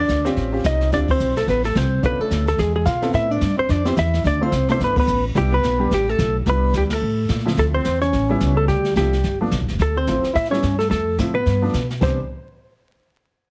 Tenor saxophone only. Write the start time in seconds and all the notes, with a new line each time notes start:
0.00 D4
0.65 D#4
0.93 D4
1.10 C4
1.37 A3
1.48 B3
1.64 A3
1.76 C4
2.04 B3
2.20 A3
2.48 A3
2.59 G#3
2.75 G#3
2.85 F4
3.14 E4
3.30 D4
3.57 C4
3.69 D4
3.85 C4
3.96 E4
4.25 D4
4.41 C4
4.69 C4
4.80 B3
4.97 B3
5.35 G3
5.52 B3
5.91 G3
6.08 A3
6.48 B3
6.75 G3
6.92 A3
7.58 A3
7.74 C4
8.01 C#4
8.56 A3
8.68 G3
8.97 G3
9.80 A3
9.96 C4
10.33 E4
10.50 C#4
10.77 A3
10.89 A3
11.34 B3
12.01 C4